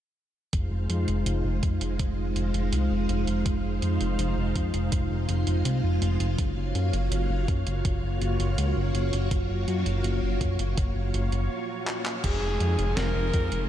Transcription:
0.53 F1 G#3 D#4 F4 C5 F5, kick, closed hi-hat
0.71 F1
0.90 F2, closed hi-hat
1.08 F1, closed hi-hat
1.26 F1, closed hi-hat
1.45 F1
1.63 F2, kick, closed hi-hat
1.81 F1, closed hi-hat
1.99 F1, kick, closed hi-hat
2.18 F1
2.36 F1, closed hi-hat
2.54 F1, closed hi-hat
2.73 C2, closed hi-hat
2.91 F1
3.09 F1, closed hi-hat
3.27 F1, closed hi-hat
3.46 F1, kick, closed hi-hat
3.64 F1
3.82 F2, closed hi-hat
4.01 F1, closed hi-hat
4.19 F1, closed hi-hat
4.37 F1
4.56 F2, kick, closed hi-hat
4.74 F1, closed hi-hat
4.92 F1, kick, closed hi-hat
5.11 F1
5.29 F1, closed hi-hat
5.47 F1, closed hi-hat
5.65 C2, closed hi-hat
5.84 F1
6.02 F1, closed hi-hat
6.20 F1, closed hi-hat
6.38 F#1 A#3 F#4 C#5, kick, closed hi-hat
6.57 F#1
6.75 F#2, closed hi-hat
6.93 F#1, closed hi-hat
7.12 F#1, closed hi-hat
7.30 F#1
7.48 F#2, kick, closed hi-hat
7.67 F#1, closed hi-hat
7.85 F#1, kick, closed hi-hat
8.03 F#1
8.22 F#1, closed hi-hat
8.40 F#1, closed hi-hat
8.58 C#2, closed hi-hat
8.76 F#1
8.95 F#1, closed hi-hat
9.13 F#1, closed hi-hat
9.31 F#1, kick, closed hi-hat
9.50 F#1
9.68 F#2, closed hi-hat
9.86 F#1, closed hi-hat
10.04 F#1, closed hi-hat
10.23 F#1
10.41 F#2, kick, closed hi-hat
10.59 F#1, closed hi-hat
10.78 F#1, kick, closed hi-hat
10.96 F#1
11.14 F#1, closed hi-hat
11.32 F#1, closed hi-hat
11.87 clap
12.05 clap
12.24 F1 G#3 C4 D#4 G#4 C5 F5, kick, closed hi-hat, crash
12.42 F1
12.60 F2, closed hi-hat
12.79 F1, closed hi-hat
12.97 F1 A#4, snare, closed hi-hat
13.15 F1
13.34 F2, kick, closed hi-hat
13.52 F1, closed hi-hat

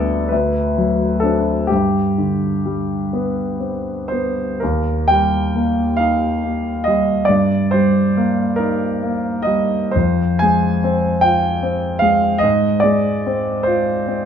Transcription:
Already playing: D2 G3 B3 D4 A4 D5
0.28 D2 B4
0.78 F#3
1.20 C4 D4 A4
1.67 G2 G4
2.18 D3
2.66 G3
3.13 B3
3.60 C4
4.08 B3 C5
4.60 D#2 A#4
5.08 G3 G5
5.55 A#3
5.97 D#4 F5
6.44 A#3
6.84 G3 D#5
7.25 G2 D5
7.71 G3 C5
8.17 A#3
8.56 D#4 A#4
9.03 A#3
9.42 D#5
9.46 G3
9.91 C5
9.96 F2
10.39 G#3 G#5
10.84 C4
11.21 F4 G5
11.63 C4
11.99 G#3 F5
12.38 D#5
12.43 G#2
12.80 G#3 D5
13.26 C4
13.63 C5
13.67 F4
14.08 C4

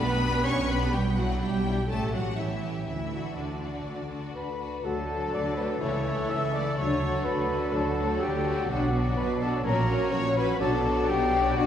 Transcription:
Already playing: B1 B3 D4 G4 B4
0.00 B5
0.22 D4 G4
0.44 B1 C#4 C#5 C#6
0.67 B3 D4 G4 B4 B5
0.92 B1 G3 G4 G5
1.16 F#3 D4 E4 F#4 F#5
1.40 B1 G3 G4 G5
1.65 D4 E4
1.89 A1 A3 C#4 G4 A4 A5
2.14 F#3 C#4 F#4 G4 F#5
2.38 A1 E3 E4 E5
2.61 C#4 G4
2.86 D2 E3 E4 E5
3.12 D4 F#4
3.35 D2 D3 D4 D5
3.63 D4 F#4
3.85 D2
4.12 D4 F#4
4.35 D2 B4 B5
4.61 D4 F#4
4.84 D2 D3 F#3 A3 F#4 A4 A5
5.09 F#3 A3 D4 A4
5.33 D2 D3 D5 D6
5.57 F#3 A3 D4 A4 B4 B5
5.81 C#2 C#3 E3 A3 E4 A4 C#5 C#6
6.06 E3 A3 E4 A4
6.29 C#2 C#3 E5 E6
6.53 E3 A3 E4 A4 D5 D6
6.76 D2 D3 F#3 D4 C#5 C#6
7.02 F#3 A3 D4 F#4
7.24 D2 D3 B4 B5
7.50 F#3 A3 D4 F#4
7.72 D2 D3 F#3 D4 A4 A5
7.98 F#3 A3 D4 F#4
8.20 D2 D3 G4 G5
8.46 F#3 A3 D4 F#4
8.68 B1 B2 F#3 B3 D4 F#4 D5 F#5
8.94 F#3 B3 D4 F#4
9.16 B1 B2 B4 B5
9.41 F#3 B3 D4 F#4 A4 A5
9.64 A#1 A#2 F#3 C#4 F#4 A#4 C#5 A#5
9.89 F#3 C#4 F#4
10.11 A#1 A#2 C#5 C#6
10.35 F#3 C#4 F#4 B4 B5
10.59 B1 B2 F#3 B3 D4 F#4 A4 D5 A5
10.84 F#3 B3 D4 F#4
11.08 B1 B2 G4 G5
11.32 F#3 B3 D4 F#4
11.56 B1 B2 F#3 D4 F#4 F#5

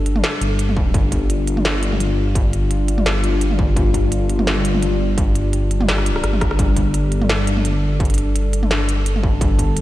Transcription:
Already playing: G1 G3 D4 A4
0.06 closed hi-hat
0.16 mid tom
0.24 snare
0.41 G1, closed hi-hat
0.59 closed hi-hat
0.69 mid tom
0.77 kick
0.94 G1 F4, kick, closed hi-hat
1.12 kick, closed hi-hat
1.30 closed hi-hat
1.47 closed hi-hat
1.57 mid tom
1.65 snare
1.83 closed hi-hat
1.92 mid tom
2.00 G1, closed hi-hat
2.35 kick, closed hi-hat
2.53 closed hi-hat
2.71 closed hi-hat
2.88 closed hi-hat
2.98 mid tom
3.06 G1, snare
3.24 closed hi-hat
3.41 closed hi-hat
3.51 mid tom
3.59 kick
3.76 G1, kick, closed hi-hat
3.94 kick, closed hi-hat
4.12 closed hi-hat
4.30 closed hi-hat
4.39 mid tom
4.47 snare
4.65 closed hi-hat
4.74 mid tom
4.83 G1, closed hi-hat
5.18 kick, closed hi-hat
5.35 closed hi-hat
5.53 closed hi-hat
5.71 closed hi-hat
5.81 mid tom
5.88 G1, cross-stick, snare
5.98 cross-stick
6.06 closed hi-hat
6.16 cross-stick
6.24 G1, cross-stick, closed hi-hat
6.33 mid tom
6.41 kick, cross-stick, closed hi-hat
6.51 cross-stick
6.59 G1 A4, kick, closed hi-hat
6.77 kick, closed hi-hat
6.94 closed hi-hat
7.12 closed hi-hat
7.22 mid tom
7.30 snare
7.47 closed hi-hat
7.57 mid tom
7.65 G1, closed hi-hat
8.00 kick, closed hi-hat
8.05 closed hi-hat
8.10 closed hi-hat
8.14 closed hi-hat
8.18 closed hi-hat
8.36 closed hi-hat
8.53 closed hi-hat
8.63 mid tom
8.71 G1, snare
8.89 closed hi-hat
9.06 closed hi-hat
9.16 mid tom
9.24 kick
9.41 G1, kick, closed hi-hat
9.59 kick, closed hi-hat
9.77 closed hi-hat

